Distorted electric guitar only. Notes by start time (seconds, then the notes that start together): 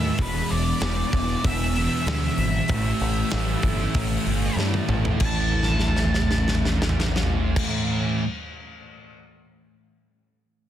Already playing: A2 E3 A3
0.19 E2 B2 E3
0.82 E2 B2 E3
1.45 E2 B2 E3
1.78 B2 E3
2.09 E2 B2 E3
2.72 A2 E3 A3
3.33 A2 E3 A3
3.95 A2 E3 A3
4.27 E3 A3
4.58 A2 E3 A3
5.20 A2 E3 A3